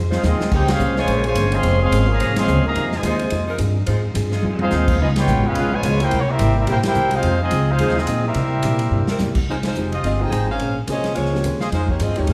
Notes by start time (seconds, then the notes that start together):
Already playing: F2 F3 D#4 G#4
0.00 C5
0.10 G#3 C4 D#4 F4 G#4 C5 F5, snare
0.23 D#2 F3 G#3 C4 D#4 F4 G#4 C5 D#5, snare, hi-hat pedal
0.40 muted upright bass stroke, snare
0.51 C#2 A#3 C#4 D#4 G4 G#4 C5 G5, kick, crash
0.67 G#3 A#3 C#4 F4 G#4 C5 F5, snare, ride
0.79 C2 A#3 C#4 G#4 C5, hi-hat pedal
0.96 C#3 F3 G#3 A#3 C#4 F4 G#4 C5 C#5 G#5, snare
1.08 A#1 A#3 C#4 G#4, ride
1.12 C5
1.24 C#3 F3 G#3 F4 C5 C#5 G#5, ride
1.35 G1 A#3 C#4 G#4, hi-hat pedal, ride
1.40 C5
1.52 F3 G#3 C4 G#4 C#5 F5 C6, ride
1.63 F1 A#3 C#4 G#4, ride
1.68 C5
1.80 F3 G#3 C4 G#4 C#5 F5 C6
1.91 G#1 A#3 C#4 G#4 C5, hi-hat pedal, ride
2.08 C#3 F3 A#3 G#4 C#5 F5
2.12 A#5
2.20 C2 A#3 C#4 G#4 C5, ride
2.36 F3 G#3 C4 G#4 C#5 F5 C6, snare, ride
2.48 C#2 A#3 C#4 G#4 C5, hi-hat pedal
2.64 C3 D#3 A#3 G#4 D#5 A#5, muted upright bass stroke
2.68 F5
2.75 F2 F3 C4 D#4 G#4, ride
2.92 C3 D#3 G#3 F4 C5 G#5, snare
2.97 D#5
3.03 D#2 F3 G#3 C4 D#4 F4 G#4 C5, hi-hat pedal, ride
3.19 ride
3.30 F2 F3 C4 D#4 G#4, ride
3.47 G#3 D#4 F4 A#4
3.58 G2 F3 C4 D#4 G#4, hi-hat pedal, ride
3.86 G#2 F3 G#3 C4 D#4 F4 G#4 C5, ride
4.14 G2 F3 C4 D#4 G#4, hi-hat pedal, ride
4.31 G#3 D#4 F4 G#4, snare
4.42 F2 F3 C4 D#4 G#4, high tom
4.59 G#3 C4 D#4 F4 G#4 C5 F5, high tom
4.71 D#2 F3 C4 D#4 G#4, snare, hi-hat pedal
4.88 kick, crash
4.99 C#2 C#3 G#3 B3 D#4 F4 G#4 D#5
5.16 G#3 B3 F4 G4 B4 C#5 G5, snare, ride
5.27 A#1 C#3 G#3 B3 F4, hi-hat pedal
5.37 G#1
5.43 F1 G#3 B3 C#4 F4 G#4 B4 F5
5.55 B1 C#3 G#3 B3 C#4 F4 B4, ride
5.71 B2 F3 G#3 F4 B4 C#5 G#5
5.83 C#2 C#3 G#3 B3 F4, hi-hat pedal, ride
6.00 A#3 E4 G4 A#4 C5 G5, ride
6.11 C2 C3 G3 A#3 E4, ride
6.21 C#5
6.28 G3 A#3 C4 E4 G4 A#4 E5
6.39 G#1 C3 G3 A#3 E4, hi-hat pedal, ride
6.55 G3 A#3 C4 E4 A#4 E5
6.59 G4
6.66 A#1 C3 G3 A#3 E4 G4 A#4 C5 G5, ride
6.71 E4
6.83 A#3 E4 G4 A#4 C5 G5, muted upright bass stroke, snare, ride
6.94 C2 C3 G3 A#3 E4, hi-hat pedal
7.11 G#3 C4 D#4 F4 G#4 C5 F5, ride
7.23 F2 F3 C4 D#4, ride
7.27 G#4
7.40 G#3 C4 D#4 F4 G#4 D#5
7.51 C#2 F3 C4 D#4 G#4, hi-hat pedal, ride
7.70 G#3 C4 D#4 F4 G#4 C5 F5
7.79 D#2 F3 C4 D#4 G#4, ride
7.83 G#4
7.89 snare
7.98 G#3 C4 D#4 F4 G#4 D#5, snare
8.07 A#2 F3 C4 D#4 G#4, hi-hat pedal, ride
8.24 G3 A#3 C4 E4 G4 A#4 E5
8.34 C3 G3 A#3 E4, ride
8.62 A#2 C3 G3 A#3 E4, hi-hat pedal, ride
8.79 ride
8.91 G2 C3 G3 A#3
8.95 E4
9.07 G3 C4 E4 A#4, muted upright bass stroke, snare
9.19 E2 C3 G3 A#3 E4, snare, hi-hat pedal
9.35 muted upright bass stroke, kick, crash
9.47 C2 F3 G#3 C4 D#4 F4 C5
9.51 G#4
9.63 G#3 D#4 F4 C5, snare, ride
9.75 F1 F3 G#3 C4 D#4 G4 G#4, hi-hat pedal
9.92 F4 C5 D#5, ride
10.03 G1 F3 C4 D#4 F4 G#4 D#5, ride
10.21 F3 G#3 C4 D#4 G4 G#4 C5 G5
10.30 G#1 F3 C4 D#4 G#4 C5 G5, hi-hat pedal, ride
10.50 C#4 G#4 C5 F5
10.59 A#1 A#3 C#4 G#4 C5, ride
10.87 C2 F3 A#3 C4 C#4 G#4 C5 D#5, hi-hat pedal, ride
11.04 snare, ride
11.15 C#2 G#3 A#3 C#4 F4 C5 C#5, ride
11.19 G#4 C5
11.25 snare
11.33 F3 A#3 C4 C#4 G4, snare
11.44 D#2 A#3 C#4 G#4 C5, hi-hat pedal, ride
11.60 G#4 C5 D#5 F5, snare
11.72 F2 F3 G#3 D#4 F4 G#4 C5, snare, ride
11.88 A#3 D#4 G4 C#5, kick
12.00 G2 F3 C4 D#4 F4 G#4 C5 D#5, hi-hat pedal, ride
12.09 F2
12.16 D#2 F3 G#3 A#3 C4 D#4 G4 C#5, ride
12.27 G#2 F3 G#3 D#4 F4, ride